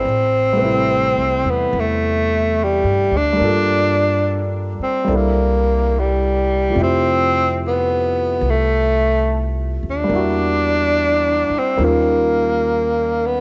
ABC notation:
X:1
M:4/4
L:1/8
Q:"Swing" 1/4=72
K:Am
V:1 name="Grand piano"
^G [C,=G,A,EB]6- [C,G,A,EB] | [G,_B,DFA]4 [G,B,DEA]4 | [C,F,A,EG]8 | [G,_B,DE^F]4 [G,^C^D^E^A]4 |]
V:2 name="Tenor saxophone"
C3 B, A,2 G, D- | D2 z C _B,2 G,2 | C2 B,2 A,2 z D- | D3 C ^A,3 B, |]
V:3 name="Upright bass" clef=bass
A,,,2- (3A,,, C,, E,, E,,2- (3E,, G,, D,, | G,,3 z C,,4 | F,,4 C,,3 ^D,, | E,,3 z ^D,,4 |]